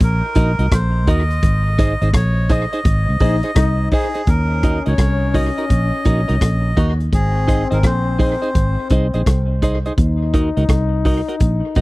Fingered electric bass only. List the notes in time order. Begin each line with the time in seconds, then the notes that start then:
0.01 A#1
0.36 A#1
0.59 C2
0.72 A#1
1.08 D#2
1.43 G#1
2.02 G#1
2.14 A#1
2.85 G#1
3.09 C2
3.21 A#1
3.56 C2
4.27 D#2
4.87 C#2
4.99 C2
5.71 A#1
6.06 A#1
6.29 C2
6.42 A#1
6.77 D#2
7.13 G#1
7.72 G#1
7.84 A#1
8.56 G#1
8.91 C2
9.14 A#1
9.27 C2
9.98 D#2
10.57 C#2
10.69 C2
11.41 A#1
11.76 A#1